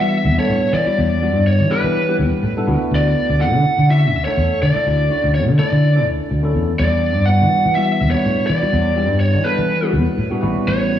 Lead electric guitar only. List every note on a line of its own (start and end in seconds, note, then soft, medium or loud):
0.00 0.35 E5 loud
0.39 0.72 C#5 medium
0.74 1.46 D5 medium
1.47 1.71 C#5 medium
1.71 2.16 B4 medium
2.95 3.44 D5 medium
3.41 3.91 F#5 medium
3.90 4.24 E5 loud
4.25 4.58 C#5 medium
4.63 5.34 D5 loud
5.35 5.41 C#5 medium
5.59 6.04 D5 medium
6.79 7.25 D5 loud
7.26 7.77 F#5 medium
7.75 8.11 E5 loud
8.11 8.47 C#5 medium
8.47 9.19 D5 loud
9.20 9.45 C#5 medium
9.44 9.89 B4 medium
10.68 10.99 C#5 loud